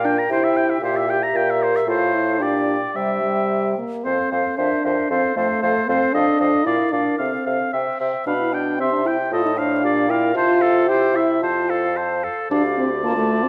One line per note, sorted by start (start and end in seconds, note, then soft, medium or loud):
0.00 0.21 A#2 soft
0.00 0.31 A#4 soft
0.00 0.81 G5 soft
0.05 0.16 D4 medium
0.05 0.20 G5 soft
0.18 0.31 A#5 soft
0.29 0.73 C3 soft
0.29 0.81 E4 medium
0.29 1.86 G4 soft
0.29 0.45 C5 soft
0.43 0.58 E5 soft
0.57 0.71 G5 soft
0.70 0.82 E5 soft
0.82 1.26 A#2 medium
0.82 1.08 G4 medium
0.82 0.98 C5 soft
0.82 1.64 E5 soft
0.97 1.11 E5 soft
1.08 1.20 G4 medium
1.08 1.24 G5 soft
1.23 1.38 A#5 soft
1.34 1.78 A#2 soft
1.34 1.86 A#4 medium
1.34 1.51 G5 soft
1.50 1.64 E5 soft
1.63 1.78 C5 soft
1.76 1.88 E5 soft
1.86 2.42 A2 soft
1.86 2.15 F4 medium
1.86 2.37 A4 soft
1.86 2.44 C5 soft
1.86 2.37 F5 soft
2.13 2.42 E4 medium
2.40 2.79 A#2 soft
2.40 2.76 D4 medium
2.40 2.79 G4 soft
2.40 2.97 D5 soft
2.40 2.94 G5 soft
2.95 3.77 C3 soft
2.95 3.21 G3 soft
2.95 3.76 G4 soft
2.95 3.78 E5 soft
2.95 3.77 G5 soft
3.23 3.74 G3 medium
3.78 4.06 A#3 soft
4.04 4.17 F2 soft
4.04 4.60 C4 soft
4.04 4.31 A4 soft
4.04 4.31 C5 soft
4.04 4.31 F5 soft
4.31 4.44 F2 soft
4.31 4.57 A4 soft
4.31 4.57 C5 soft
4.31 4.58 F5 soft
4.57 4.70 F2 soft
4.57 5.12 D4 medium
4.57 4.84 A#4 soft
4.57 4.83 C5 soft
4.57 4.83 E5 soft
4.84 4.96 F2 soft
4.84 5.10 A#4 soft
4.84 5.10 C5 soft
4.84 5.10 E5 soft
5.10 5.22 F2 soft
5.10 5.36 C4 medium
5.10 5.35 A4 soft
5.10 5.36 C5 soft
5.10 5.36 F5 soft
5.36 5.48 F2 soft
5.36 5.90 A3 medium
5.36 5.62 A4 soft
5.36 5.62 C5 soft
5.36 5.62 F5 soft
5.62 5.74 F2 soft
5.62 5.87 A4 soft
5.62 5.87 C5 soft
5.62 5.88 F5 soft
5.88 6.00 F2 medium
5.88 6.15 C4 medium
5.88 6.13 A4 soft
5.88 6.13 C5 soft
5.88 6.13 F5 soft
6.13 6.26 F2 soft
6.13 6.67 D4 medium
6.13 6.39 A4 medium
6.13 6.39 D#5 soft
6.13 6.39 F5 soft
6.40 6.52 F2 soft
6.40 6.65 A4 soft
6.40 6.66 D#5 soft
6.40 6.65 F5 soft
6.65 6.78 A#2 soft
6.65 6.94 E4 medium
6.65 6.91 A#4 soft
6.65 6.92 D5 soft
6.65 6.92 F5 soft
6.92 7.04 A#2 soft
6.92 7.19 D4 medium
6.92 7.18 A#4 soft
6.92 7.18 D5 soft
6.92 7.18 F5 soft
7.18 7.31 C3 soft
7.18 7.72 C4 soft
7.18 7.45 A4 soft
7.18 7.45 F5 soft
7.45 7.58 C3 soft
7.45 7.72 A4 soft
7.45 7.72 F5 soft
7.72 7.85 C3 soft
7.72 7.99 C5 soft
7.72 7.99 E5 soft
7.72 7.99 G5 soft
7.99 8.12 C3 soft
7.99 8.26 C5 soft
7.99 8.26 E5 soft
7.99 8.26 G5 soft
8.26 8.81 B2 soft
8.26 8.33 D4 medium
8.26 8.55 B4 soft
8.26 8.56 F5 soft
8.26 8.54 B5 soft
8.40 8.54 E4 medium
8.53 8.81 D4 medium
8.53 8.79 D5 soft
8.53 8.79 G5 soft
8.79 9.31 C3 soft
8.79 8.92 C4 medium
8.79 9.08 G4 soft
8.79 9.08 E5 soft
8.79 9.08 C6 soft
8.93 9.05 D4 medium
9.05 9.17 E4 medium
9.05 9.31 C5 soft
9.05 9.31 G5 soft
9.05 9.32 G5 soft
9.31 9.84 A2 soft
9.31 9.44 F4 medium
9.31 9.59 A4 soft
9.31 9.60 D#5 soft
9.31 9.59 A5 soft
9.46 9.51 D#4 medium
9.57 10.11 D4 medium
9.57 9.82 C5 soft
9.57 9.83 F5 soft
9.83 10.36 A#2 medium
9.83 10.10 G4 soft
9.83 10.12 D5 soft
9.83 10.11 F5 soft
10.09 10.34 E4 medium
10.09 10.35 A#4 soft
10.09 10.35 F5 soft
10.09 10.35 G5 soft
10.35 11.42 C3 medium
10.35 10.89 F4 medium
10.35 10.63 F4 medium
10.35 10.63 C5 medium
10.35 10.63 A5 medium
10.61 10.88 A4 soft
10.61 10.87 F5 soft
10.87 11.17 E4 soft
10.87 11.17 G4 medium
10.87 11.17 C5 soft
10.87 11.16 G5 soft
11.14 11.44 E4 medium
11.14 11.41 G4 soft
11.14 11.41 E5 soft
11.14 11.42 E5 soft
11.42 12.22 F2 soft
11.42 11.71 F4 soft
11.42 11.96 F4 medium
11.42 11.71 C5 soft
11.42 11.71 A5 soft
11.69 11.98 A4 soft
11.69 11.99 F5 soft
11.96 12.25 F4 soft
11.96 12.25 C5 soft
11.96 12.26 A5 soft
12.23 12.50 A4 soft
12.23 12.50 F5 soft
12.50 13.49 D2 medium
12.50 12.63 D4 medium
12.50 13.05 G4 medium
12.50 13.49 D5 soft
12.50 12.80 F5 medium
12.77 12.89 C4 medium
13.03 13.16 A#3 medium
13.03 13.49 F4 medium
13.03 13.49 A5 medium
13.17 13.45 A3 medium
13.43 13.49 C4 medium